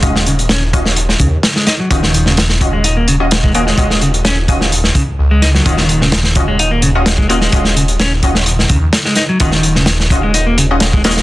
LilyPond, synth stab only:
\new Staff \with { instrumentName = "Synth stab" } { \time 4/4 \key c \phrygian \tempo 4 = 128 <des' f' ges' ees''>16 r4 r16 <des' f' ges' ees''>16 r2 r16 | <des' f' ges' ees''>16 r4 r16 <des' f' ges' ees''>16 r4 <des' f' ges' ees''>16 r8 <des' f' ges' ees''>16 r16 | <des' f' ges' ees''>16 r4 r16 <des' f' ges' ees''>16 r2 r16 | <des' f' ges' ees''>16 r4 r16 <des' f' ges' ees''>16 r4 <des' f' ges' ees''>16 r8 <des' f' ges' ees''>16 r16 |
<des' f' ges' ees''>16 r4 r16 <des' f' ges' ees''>16 r2 r16 | <des' f' ges' ees''>16 r4 r16 <des' f' ges' ees''>16 r4 <des' f' ges' ees''>16 r8 <des' f' ges' ees''>16 r16 | }